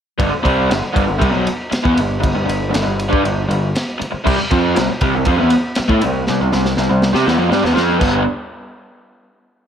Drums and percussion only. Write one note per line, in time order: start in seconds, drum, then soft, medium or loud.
0.20 kick loud
0.20 ride loud
0.45 kick loud
0.45 ride medium
0.71 snare loud
0.71 ride loud
0.96 kick loud
0.96 ride medium
1.22 kick loud
1.22 ride loud
1.47 ride medium
1.72 snare loud
1.72 ride loud
1.85 kick loud
1.97 ride medium
2.23 kick loud
2.23 ride loud
2.49 ride medium
2.74 snare loud
2.74 ride loud
2.99 ride medium
3.13 kick loud
3.25 ride medium
3.51 ride medium
3.75 snare loud
3.75 ride loud
4.01 ride medium
4.27 kick loud
4.27 crash loud
4.51 kick loud
4.51 ride medium
4.76 snare loud
4.76 ride loud
5.01 kick loud
5.01 ride medium
5.25 kick loud
5.25 ride loud
5.50 ride medium
5.75 snare loud
5.75 ride loud
5.89 kick loud
6.01 ride medium
6.27 snare medium
6.52 snare medium
6.65 snare medium
6.77 snare medium
7.02 snare medium
7.15 snare medium
7.28 snare medium
7.52 snare loud
7.65 snare medium
7.77 snare loud
8.01 kick loud
8.01 crash loud